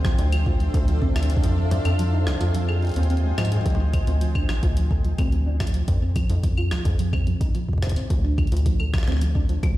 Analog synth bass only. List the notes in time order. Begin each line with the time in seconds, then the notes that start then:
0.05 A1
0.19 D2
0.74 D2
1.43 F2
1.85 F2
2.27 C2
2.41 F2
2.96 D#2
3.38 G#2
3.66 D2
4.07 D2
4.49 A1
4.63 D2
5.19 D2
5.88 F2
6.30 F2
6.71 C2
6.85 F2
8.10 D2
8.52 D2
8.93 A1
9.07 D2
9.63 D2